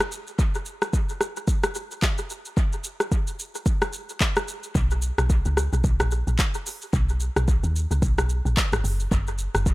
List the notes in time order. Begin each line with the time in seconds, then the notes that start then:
0.00 cross-stick, shaker
0.12 shaker
0.27 shaker
0.39 kick, shaker
0.54 shaker
0.66 shaker
0.82 cross-stick, shaker
0.93 kick, shaker
1.09 shaker
1.21 cross-stick, shaker
1.37 shaker
1.48 kick, shaker
1.63 cross-stick, shaker
1.75 shaker
1.91 shaker
2.02 kick, clap, shaker
2.18 shaker
2.30 shaker
2.45 shaker
2.57 kick, shaker
2.73 shaker
2.84 shaker
3.00 cross-stick, shaker
3.12 kick, shaker
3.27 shaker
3.39 shaker
3.55 shaker
3.66 kick, shaker
3.82 cross-stick, shaker
3.93 shaker
4.09 shaker
4.20 kick, clap, shaker
4.36 cross-stick, shaker
4.48 shaker
4.63 shaker
4.75 B1, kick, shaker
4.91 shaker
5.02 shaker
5.18 B1, cross-stick, shaker
5.30 kick, shaker
5.45 C#2, shaker
5.57 cross-stick, shaker
5.73 B1, shaker
5.84 B1, kick, shaker
6.00 A#1, cross-stick, shaker
6.11 shaker
6.27 A#1, shaker
6.39 kick, clap, shaker
6.54 shaker
6.66 open hi-hat, shaker
6.82 shaker
6.93 B1, kick, shaker
7.09 shaker
7.20 shaker
7.36 B1, cross-stick, shaker
7.48 kick, shaker
7.63 D#2, shaker
7.76 shaker
7.91 C#2, shaker
8.02 B1, kick, shaker
8.18 B1, cross-stick, shaker
8.29 shaker
8.45 A#1, shaker
8.57 kick, clap, shaker
8.73 G#1, cross-stick, shaker
8.84 F#1, open hi-hat, shaker
9.00 shaker
9.11 F#1, kick, shaker
9.27 shaker
9.38 shaker
9.55 F#1, cross-stick, shaker
9.66 kick, shaker